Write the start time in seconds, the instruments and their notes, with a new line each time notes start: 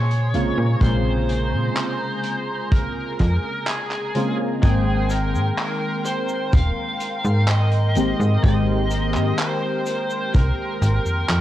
Already playing: fm bass A#2, synth keys C3 C#3 G#3 A#3 F4, analog synth pad G#4 C6, lead electric guitar C#5
0.11 closed hi-hat
0.34 fm bass A#1, synth keys C3 C#3 G#3 A#3 F4, analog synth pad A#5, closed hi-hat
0.58 fm bass A#2
0.81 fm bass A#1, synth keys C#3 G#3 A#3 C4 F4, lead electric guitar C5, kick, closed hi-hat
1.29 closed hi-hat
1.53 fm bass A#2
1.77 clap, closed hi-hat
2.24 closed hi-hat
2.72 lead electric guitar A#4, kick, closed hi-hat
3.19 fm bass F2, kick, closed hi-hat
3.67 lead electric guitar G#4, clap, closed hi-hat
3.91 clap, closed hi-hat
4.15 synth keys C#3 G#3 A#3 C4 F4, closed hi-hat
4.62 fm bass G#1, synth keys D#3 G#3 A#3 C4 G5, lead electric guitar G#4, analog synth pad A#4 G5 C6, kick, closed hi-hat, cabasa
5.09 lead electric guitar A#4, closed hi-hat, cabasa
5.34 fm bass G#2, cabasa
5.57 clap, closed hi-hat, cabasa
6.05 lead electric guitar C5, closed hi-hat, cabasa
6.29 cabasa
6.53 fm bass D#1, lead electric guitar F5, kick, closed hi-hat, cabasa
7.00 closed hi-hat, cabasa
7.24 fm bass G#2, cabasa
7.48 lead electric guitar D#5, clap, closed hi-hat, cabasa
7.72 closed hi-hat
7.95 fm bass G#1, synth keys D#3 G#3 A#3 C4 G4, closed hi-hat, cabasa
8.20 fm bass G#2, cabasa
8.42 fm bass G#1, synth keys D#3 G#3 A#3 C4 G4, lead electric guitar D#5, kick, closed hi-hat, cabasa
8.90 closed hi-hat, cabasa
9.14 fm bass G#2, clap, cabasa
9.39 lead electric guitar C5, clap, closed hi-hat, cabasa
9.86 closed hi-hat, cabasa
10.10 cabasa
10.34 fm bass C2, lead electric guitar A#4, kick, closed hi-hat, cabasa
10.82 fm bass G#1, closed hi-hat, cabasa
11.06 fm bass F2, cabasa
11.30 fm bass F2, clap, closed hi-hat, cabasa